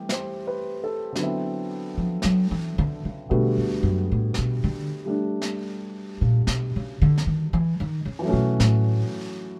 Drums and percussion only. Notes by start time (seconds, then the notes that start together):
0.09 brush sweep, snare
1.16 brush sweep, snare
2.22 brush sweep, snare
3.28 brush sweep
4.34 brush sweep, snare
5.42 brush sweep, snare
6.47 brush sweep, snare
7.18 snare
7.54 brush sweep
8.60 brush sweep, snare